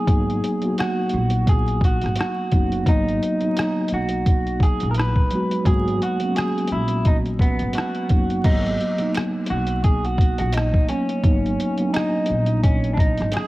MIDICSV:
0, 0, Header, 1, 5, 480
1, 0, Start_track
1, 0, Key_signature, 5, "minor"
1, 0, Tempo, 697674
1, 51, Time_signature, 4, 2, 24, 8
1, 9269, End_track
2, 0, Start_track
2, 0, Title_t, "Clean electric guitar"
2, 0, Program_c, 0, 27
2, 0, Note_on_c, 0, 68, 88
2, 543, Note_off_c, 0, 68, 0
2, 546, Note_on_c, 0, 66, 88
2, 1024, Note_off_c, 0, 66, 0
2, 1027, Note_on_c, 0, 68, 88
2, 1243, Note_off_c, 0, 68, 0
2, 1273, Note_on_c, 0, 66, 81
2, 1501, Note_off_c, 0, 66, 0
2, 1509, Note_on_c, 0, 66, 92
2, 1986, Note_on_c, 0, 63, 99
2, 1994, Note_off_c, 0, 66, 0
2, 2707, Note_off_c, 0, 63, 0
2, 2710, Note_on_c, 0, 66, 98
2, 3185, Note_on_c, 0, 68, 87
2, 3195, Note_off_c, 0, 66, 0
2, 3374, Note_off_c, 0, 68, 0
2, 3377, Note_on_c, 0, 70, 71
2, 3414, Note_off_c, 0, 70, 0
2, 3425, Note_on_c, 0, 71, 97
2, 3895, Note_off_c, 0, 71, 0
2, 3898, Note_on_c, 0, 68, 104
2, 4142, Note_off_c, 0, 68, 0
2, 4148, Note_on_c, 0, 66, 96
2, 4376, Note_off_c, 0, 66, 0
2, 4379, Note_on_c, 0, 68, 94
2, 4598, Note_off_c, 0, 68, 0
2, 4625, Note_on_c, 0, 64, 89
2, 4863, Note_on_c, 0, 63, 91
2, 4865, Note_off_c, 0, 64, 0
2, 4926, Note_off_c, 0, 63, 0
2, 5097, Note_on_c, 0, 59, 74
2, 5332, Note_on_c, 0, 66, 88
2, 5546, Note_off_c, 0, 59, 0
2, 5816, Note_on_c, 0, 63, 91
2, 5826, Note_off_c, 0, 66, 0
2, 6266, Note_off_c, 0, 63, 0
2, 6538, Note_on_c, 0, 66, 93
2, 6770, Note_off_c, 0, 66, 0
2, 6773, Note_on_c, 0, 68, 102
2, 6913, Note_off_c, 0, 68, 0
2, 6913, Note_on_c, 0, 66, 98
2, 7144, Note_off_c, 0, 66, 0
2, 7152, Note_on_c, 0, 66, 88
2, 7250, Note_off_c, 0, 66, 0
2, 7250, Note_on_c, 0, 63, 88
2, 7491, Note_off_c, 0, 63, 0
2, 7494, Note_on_c, 0, 61, 85
2, 8208, Note_off_c, 0, 61, 0
2, 8211, Note_on_c, 0, 63, 88
2, 8689, Note_off_c, 0, 63, 0
2, 8691, Note_on_c, 0, 61, 83
2, 8898, Note_off_c, 0, 61, 0
2, 8903, Note_on_c, 0, 62, 64
2, 8935, Note_off_c, 0, 62, 0
2, 8938, Note_on_c, 0, 63, 77
2, 9178, Note_on_c, 0, 68, 89
2, 9182, Note_off_c, 0, 63, 0
2, 9269, Note_off_c, 0, 68, 0
2, 9269, End_track
3, 0, Start_track
3, 0, Title_t, "Tine electric piano"
3, 0, Program_c, 1, 4
3, 0, Control_c, 1, 64, 127
3, 0, Note_on_c, 1, 54, 67
3, 0, Note_on_c, 1, 58, 65
3, 0, Note_on_c, 1, 59, 65
3, 0, Note_on_c, 1, 63, 75
3, 46, Note_off_c, 1, 54, 0
3, 46, Note_on_c, 1, 54, 76
3, 52, Note_off_c, 1, 58, 0
3, 52, Note_on_c, 1, 58, 61
3, 58, Note_off_c, 1, 59, 0
3, 58, Note_on_c, 1, 59, 67
3, 65, Note_off_c, 1, 63, 0
3, 65, Note_on_c, 1, 63, 83
3, 399, Note_off_c, 1, 54, 0
3, 402, Note_off_c, 1, 58, 0
3, 405, Note_off_c, 1, 59, 0
3, 409, Note_off_c, 1, 63, 0
3, 428, Note_on_c, 1, 54, 71
3, 434, Note_on_c, 1, 58, 60
3, 440, Note_on_c, 1, 59, 71
3, 447, Note_on_c, 1, 66, 77
3, 1307, Note_off_c, 1, 54, 0
3, 1310, Note_off_c, 1, 58, 0
3, 1314, Note_off_c, 1, 59, 0
3, 1317, Note_off_c, 1, 66, 0
3, 1735, Note_on_c, 1, 54, 71
3, 1741, Note_on_c, 1, 58, 62
3, 1747, Note_on_c, 1, 59, 67
3, 1754, Note_on_c, 1, 63, 77
3, 1945, Note_off_c, 1, 54, 0
3, 1952, Note_off_c, 1, 58, 0
3, 1953, Note_on_c, 1, 54, 72
3, 1958, Note_off_c, 1, 59, 0
3, 1960, Note_on_c, 1, 58, 69
3, 1965, Note_off_c, 1, 63, 0
3, 1967, Note_on_c, 1, 59, 67
3, 1973, Note_on_c, 1, 63, 81
3, 2313, Note_off_c, 1, 54, 0
3, 2316, Note_off_c, 1, 58, 0
3, 2319, Note_off_c, 1, 59, 0
3, 2323, Note_off_c, 1, 63, 0
3, 2349, Note_on_c, 1, 54, 68
3, 2356, Note_on_c, 1, 58, 58
3, 2362, Note_on_c, 1, 59, 64
3, 2370, Note_on_c, 1, 63, 78
3, 3228, Note_off_c, 1, 54, 0
3, 3231, Note_off_c, 1, 58, 0
3, 3234, Note_off_c, 1, 59, 0
3, 3238, Note_off_c, 1, 63, 0
3, 3662, Note_on_c, 1, 54, 74
3, 3669, Note_on_c, 1, 56, 69
3, 3676, Note_on_c, 1, 59, 66
3, 3683, Note_on_c, 1, 66, 74
3, 3870, Note_off_c, 1, 54, 0
3, 3878, Note_on_c, 1, 54, 72
3, 3883, Note_off_c, 1, 59, 0
3, 3884, Note_on_c, 1, 58, 66
3, 3886, Note_off_c, 1, 56, 0
3, 3890, Note_off_c, 1, 66, 0
3, 3892, Note_on_c, 1, 59, 60
3, 3899, Note_on_c, 1, 66, 78
3, 4235, Note_off_c, 1, 54, 0
3, 4238, Note_off_c, 1, 58, 0
3, 4242, Note_off_c, 1, 59, 0
3, 4246, Note_off_c, 1, 66, 0
3, 4276, Note_on_c, 1, 54, 71
3, 4283, Note_on_c, 1, 58, 68
3, 4289, Note_on_c, 1, 59, 66
3, 4296, Note_on_c, 1, 61, 78
3, 5151, Note_off_c, 1, 54, 0
3, 5155, Note_off_c, 1, 58, 0
3, 5158, Note_off_c, 1, 59, 0
3, 5161, Note_off_c, 1, 61, 0
3, 5562, Note_on_c, 1, 54, 75
3, 5568, Note_on_c, 1, 58, 65
3, 5574, Note_on_c, 1, 59, 60
3, 5581, Note_on_c, 1, 63, 71
3, 5792, Note_off_c, 1, 54, 0
3, 5795, Note_off_c, 1, 58, 0
3, 5798, Note_off_c, 1, 59, 0
3, 5802, Note_off_c, 1, 63, 0
3, 5802, Note_on_c, 1, 54, 80
3, 5809, Note_on_c, 1, 58, 63
3, 5815, Note_on_c, 1, 59, 62
3, 5821, Control_c, 1, 64, 0
3, 5823, Note_on_c, 1, 63, 79
3, 5945, Control_c, 1, 64, 127
3, 6157, Note_off_c, 1, 54, 0
3, 6161, Note_off_c, 1, 58, 0
3, 6164, Note_off_c, 1, 59, 0
3, 6168, Note_off_c, 1, 63, 0
3, 6183, Note_on_c, 1, 54, 73
3, 6189, Note_on_c, 1, 58, 63
3, 6196, Note_on_c, 1, 59, 66
3, 6202, Note_on_c, 1, 63, 75
3, 7065, Note_off_c, 1, 54, 0
3, 7068, Note_off_c, 1, 58, 0
3, 7071, Note_off_c, 1, 59, 0
3, 7075, Note_off_c, 1, 63, 0
3, 7497, Note_on_c, 1, 54, 60
3, 7502, Note_on_c, 1, 58, 61
3, 7508, Note_on_c, 1, 59, 63
3, 7517, Note_on_c, 1, 61, 79
3, 7716, Note_off_c, 1, 54, 0
3, 7722, Note_off_c, 1, 58, 0
3, 7725, Note_off_c, 1, 59, 0
3, 7725, Note_on_c, 1, 54, 71
3, 7729, Note_off_c, 1, 61, 0
3, 7731, Note_on_c, 1, 58, 64
3, 7737, Note_on_c, 1, 59, 69
3, 7744, Note_on_c, 1, 63, 90
3, 8078, Note_off_c, 1, 54, 0
3, 8081, Note_off_c, 1, 58, 0
3, 8084, Note_off_c, 1, 59, 0
3, 8088, Note_off_c, 1, 63, 0
3, 8112, Note_on_c, 1, 54, 71
3, 8118, Note_on_c, 1, 58, 64
3, 8125, Note_on_c, 1, 59, 64
3, 8131, Note_on_c, 1, 62, 61
3, 8159, Note_off_c, 1, 62, 0
3, 8175, Note_on_c, 1, 63, 82
3, 8989, Note_off_c, 1, 54, 0
3, 8992, Note_off_c, 1, 58, 0
3, 8996, Note_off_c, 1, 59, 0
3, 9021, Note_off_c, 1, 63, 0
3, 9269, End_track
4, 0, Start_track
4, 0, Title_t, "Upright bass"
4, 0, Program_c, 2, 32
4, 55, Note_on_c, 2, 32, 90
4, 259, Note_off_c, 2, 32, 0
4, 780, Note_on_c, 2, 34, 87
4, 1370, Note_off_c, 2, 34, 0
4, 1403, Note_on_c, 2, 32, 87
4, 1483, Note_off_c, 2, 32, 0
4, 1739, Note_on_c, 2, 30, 86
4, 1942, Note_off_c, 2, 30, 0
4, 1974, Note_on_c, 2, 32, 94
4, 2179, Note_off_c, 2, 32, 0
4, 2700, Note_on_c, 2, 35, 74
4, 3290, Note_off_c, 2, 35, 0
4, 3322, Note_on_c, 2, 34, 86
4, 3524, Note_off_c, 2, 34, 0
4, 3896, Note_on_c, 2, 32, 91
4, 4100, Note_off_c, 2, 32, 0
4, 4620, Note_on_c, 2, 34, 73
4, 5210, Note_off_c, 2, 34, 0
4, 5242, Note_on_c, 2, 32, 76
4, 5323, Note_off_c, 2, 32, 0
4, 5579, Note_on_c, 2, 30, 78
4, 5782, Note_off_c, 2, 30, 0
4, 5813, Note_on_c, 2, 32, 91
4, 6018, Note_off_c, 2, 32, 0
4, 6541, Note_on_c, 2, 35, 84
4, 7130, Note_off_c, 2, 35, 0
4, 7161, Note_on_c, 2, 34, 90
4, 7364, Note_off_c, 2, 34, 0
4, 7735, Note_on_c, 2, 32, 87
4, 7939, Note_off_c, 2, 32, 0
4, 8461, Note_on_c, 2, 34, 80
4, 9050, Note_off_c, 2, 34, 0
4, 9082, Note_on_c, 2, 32, 94
4, 9163, Note_off_c, 2, 32, 0
4, 9269, End_track
5, 0, Start_track
5, 0, Title_t, "Drums"
5, 51, Note_on_c, 9, 36, 104
5, 53, Note_on_c, 9, 42, 72
5, 119, Note_off_c, 9, 36, 0
5, 121, Note_off_c, 9, 42, 0
5, 205, Note_on_c, 9, 42, 33
5, 273, Note_off_c, 9, 42, 0
5, 301, Note_on_c, 9, 42, 57
5, 370, Note_off_c, 9, 42, 0
5, 424, Note_on_c, 9, 42, 42
5, 493, Note_off_c, 9, 42, 0
5, 536, Note_on_c, 9, 42, 92
5, 553, Note_on_c, 9, 37, 107
5, 605, Note_off_c, 9, 42, 0
5, 621, Note_off_c, 9, 37, 0
5, 753, Note_on_c, 9, 42, 59
5, 821, Note_off_c, 9, 42, 0
5, 894, Note_on_c, 9, 42, 49
5, 963, Note_off_c, 9, 42, 0
5, 1012, Note_on_c, 9, 36, 89
5, 1013, Note_on_c, 9, 42, 75
5, 1081, Note_off_c, 9, 36, 0
5, 1082, Note_off_c, 9, 42, 0
5, 1155, Note_on_c, 9, 42, 35
5, 1224, Note_off_c, 9, 42, 0
5, 1246, Note_on_c, 9, 36, 85
5, 1267, Note_on_c, 9, 42, 58
5, 1315, Note_off_c, 9, 36, 0
5, 1335, Note_off_c, 9, 42, 0
5, 1387, Note_on_c, 9, 42, 47
5, 1416, Note_on_c, 9, 37, 38
5, 1455, Note_off_c, 9, 42, 0
5, 1483, Note_on_c, 9, 42, 79
5, 1485, Note_off_c, 9, 37, 0
5, 1517, Note_on_c, 9, 37, 105
5, 1552, Note_off_c, 9, 42, 0
5, 1586, Note_off_c, 9, 37, 0
5, 1731, Note_on_c, 9, 42, 59
5, 1734, Note_on_c, 9, 36, 80
5, 1799, Note_off_c, 9, 42, 0
5, 1803, Note_off_c, 9, 36, 0
5, 1871, Note_on_c, 9, 42, 40
5, 1940, Note_off_c, 9, 42, 0
5, 1969, Note_on_c, 9, 36, 95
5, 1972, Note_on_c, 9, 42, 75
5, 2038, Note_off_c, 9, 36, 0
5, 2040, Note_off_c, 9, 42, 0
5, 2123, Note_on_c, 9, 42, 32
5, 2191, Note_off_c, 9, 42, 0
5, 2220, Note_on_c, 9, 42, 51
5, 2289, Note_off_c, 9, 42, 0
5, 2344, Note_on_c, 9, 42, 40
5, 2412, Note_off_c, 9, 42, 0
5, 2454, Note_on_c, 9, 42, 94
5, 2471, Note_on_c, 9, 37, 110
5, 2523, Note_off_c, 9, 42, 0
5, 2539, Note_off_c, 9, 37, 0
5, 2671, Note_on_c, 9, 42, 60
5, 2740, Note_off_c, 9, 42, 0
5, 2812, Note_on_c, 9, 42, 49
5, 2881, Note_off_c, 9, 42, 0
5, 2932, Note_on_c, 9, 36, 89
5, 2932, Note_on_c, 9, 42, 75
5, 3000, Note_off_c, 9, 42, 0
5, 3001, Note_off_c, 9, 36, 0
5, 3073, Note_on_c, 9, 42, 33
5, 3142, Note_off_c, 9, 42, 0
5, 3165, Note_on_c, 9, 36, 84
5, 3183, Note_on_c, 9, 42, 60
5, 3234, Note_off_c, 9, 36, 0
5, 3252, Note_off_c, 9, 42, 0
5, 3304, Note_on_c, 9, 42, 46
5, 3372, Note_off_c, 9, 42, 0
5, 3402, Note_on_c, 9, 42, 81
5, 3437, Note_on_c, 9, 37, 104
5, 3471, Note_off_c, 9, 42, 0
5, 3506, Note_off_c, 9, 37, 0
5, 3548, Note_on_c, 9, 36, 78
5, 3617, Note_off_c, 9, 36, 0
5, 3650, Note_on_c, 9, 42, 60
5, 3719, Note_off_c, 9, 42, 0
5, 3793, Note_on_c, 9, 42, 44
5, 3862, Note_off_c, 9, 42, 0
5, 3890, Note_on_c, 9, 36, 102
5, 3893, Note_on_c, 9, 42, 77
5, 3959, Note_off_c, 9, 36, 0
5, 3962, Note_off_c, 9, 42, 0
5, 4044, Note_on_c, 9, 42, 34
5, 4113, Note_off_c, 9, 42, 0
5, 4141, Note_on_c, 9, 42, 54
5, 4209, Note_off_c, 9, 42, 0
5, 4264, Note_on_c, 9, 42, 44
5, 4332, Note_off_c, 9, 42, 0
5, 4375, Note_on_c, 9, 42, 89
5, 4391, Note_on_c, 9, 37, 113
5, 4444, Note_off_c, 9, 42, 0
5, 4460, Note_off_c, 9, 37, 0
5, 4526, Note_on_c, 9, 42, 36
5, 4592, Note_off_c, 9, 42, 0
5, 4592, Note_on_c, 9, 42, 62
5, 4661, Note_off_c, 9, 42, 0
5, 4732, Note_on_c, 9, 42, 48
5, 4801, Note_off_c, 9, 42, 0
5, 4850, Note_on_c, 9, 42, 76
5, 4852, Note_on_c, 9, 36, 90
5, 4919, Note_off_c, 9, 42, 0
5, 4920, Note_off_c, 9, 36, 0
5, 4991, Note_on_c, 9, 42, 31
5, 5060, Note_off_c, 9, 42, 0
5, 5085, Note_on_c, 9, 36, 81
5, 5103, Note_on_c, 9, 42, 54
5, 5154, Note_off_c, 9, 36, 0
5, 5172, Note_off_c, 9, 42, 0
5, 5223, Note_on_c, 9, 42, 46
5, 5292, Note_off_c, 9, 42, 0
5, 5319, Note_on_c, 9, 42, 78
5, 5354, Note_on_c, 9, 37, 96
5, 5388, Note_off_c, 9, 42, 0
5, 5422, Note_off_c, 9, 37, 0
5, 5467, Note_on_c, 9, 42, 30
5, 5536, Note_off_c, 9, 42, 0
5, 5568, Note_on_c, 9, 42, 62
5, 5574, Note_on_c, 9, 36, 84
5, 5637, Note_off_c, 9, 42, 0
5, 5643, Note_off_c, 9, 36, 0
5, 5710, Note_on_c, 9, 42, 40
5, 5779, Note_off_c, 9, 42, 0
5, 5808, Note_on_c, 9, 42, 77
5, 5808, Note_on_c, 9, 49, 82
5, 5809, Note_on_c, 9, 36, 101
5, 5877, Note_off_c, 9, 42, 0
5, 5877, Note_off_c, 9, 49, 0
5, 5878, Note_off_c, 9, 36, 0
5, 5961, Note_on_c, 9, 42, 34
5, 6029, Note_off_c, 9, 42, 0
5, 6060, Note_on_c, 9, 42, 55
5, 6128, Note_off_c, 9, 42, 0
5, 6181, Note_on_c, 9, 42, 43
5, 6250, Note_off_c, 9, 42, 0
5, 6293, Note_on_c, 9, 26, 64
5, 6295, Note_on_c, 9, 42, 90
5, 6312, Note_on_c, 9, 37, 107
5, 6362, Note_off_c, 9, 26, 0
5, 6364, Note_off_c, 9, 42, 0
5, 6381, Note_off_c, 9, 37, 0
5, 6512, Note_on_c, 9, 42, 60
5, 6581, Note_off_c, 9, 42, 0
5, 6652, Note_on_c, 9, 42, 46
5, 6721, Note_off_c, 9, 42, 0
5, 6770, Note_on_c, 9, 42, 81
5, 6772, Note_on_c, 9, 36, 85
5, 6839, Note_off_c, 9, 42, 0
5, 6841, Note_off_c, 9, 36, 0
5, 6913, Note_on_c, 9, 42, 33
5, 6982, Note_off_c, 9, 42, 0
5, 7006, Note_on_c, 9, 36, 85
5, 7024, Note_on_c, 9, 42, 61
5, 7075, Note_off_c, 9, 36, 0
5, 7093, Note_off_c, 9, 42, 0
5, 7144, Note_on_c, 9, 42, 50
5, 7213, Note_off_c, 9, 42, 0
5, 7242, Note_on_c, 9, 42, 83
5, 7249, Note_on_c, 9, 26, 70
5, 7276, Note_on_c, 9, 37, 99
5, 7311, Note_off_c, 9, 42, 0
5, 7318, Note_off_c, 9, 26, 0
5, 7345, Note_off_c, 9, 37, 0
5, 7389, Note_on_c, 9, 36, 83
5, 7458, Note_off_c, 9, 36, 0
5, 7490, Note_on_c, 9, 42, 65
5, 7559, Note_off_c, 9, 42, 0
5, 7631, Note_on_c, 9, 42, 42
5, 7700, Note_off_c, 9, 42, 0
5, 7731, Note_on_c, 9, 36, 105
5, 7732, Note_on_c, 9, 42, 76
5, 7800, Note_off_c, 9, 36, 0
5, 7801, Note_off_c, 9, 42, 0
5, 7883, Note_on_c, 9, 42, 31
5, 7952, Note_off_c, 9, 42, 0
5, 7980, Note_on_c, 9, 42, 59
5, 8049, Note_off_c, 9, 42, 0
5, 8102, Note_on_c, 9, 42, 45
5, 8171, Note_off_c, 9, 42, 0
5, 8214, Note_on_c, 9, 26, 64
5, 8215, Note_on_c, 9, 42, 91
5, 8231, Note_on_c, 9, 37, 110
5, 8283, Note_off_c, 9, 26, 0
5, 8284, Note_off_c, 9, 42, 0
5, 8300, Note_off_c, 9, 37, 0
5, 8434, Note_on_c, 9, 42, 57
5, 8502, Note_off_c, 9, 42, 0
5, 8574, Note_on_c, 9, 42, 47
5, 8643, Note_off_c, 9, 42, 0
5, 8693, Note_on_c, 9, 36, 90
5, 8693, Note_on_c, 9, 42, 73
5, 8762, Note_off_c, 9, 36, 0
5, 8762, Note_off_c, 9, 42, 0
5, 8833, Note_on_c, 9, 42, 33
5, 8902, Note_off_c, 9, 42, 0
5, 8926, Note_on_c, 9, 36, 85
5, 8944, Note_on_c, 9, 42, 61
5, 8995, Note_off_c, 9, 36, 0
5, 9013, Note_off_c, 9, 42, 0
5, 9064, Note_on_c, 9, 42, 46
5, 9094, Note_on_c, 9, 37, 37
5, 9133, Note_off_c, 9, 42, 0
5, 9162, Note_on_c, 9, 42, 80
5, 9163, Note_off_c, 9, 37, 0
5, 9172, Note_on_c, 9, 26, 66
5, 9196, Note_on_c, 9, 37, 105
5, 9230, Note_off_c, 9, 42, 0
5, 9241, Note_off_c, 9, 26, 0
5, 9265, Note_off_c, 9, 37, 0
5, 9269, End_track
0, 0, End_of_file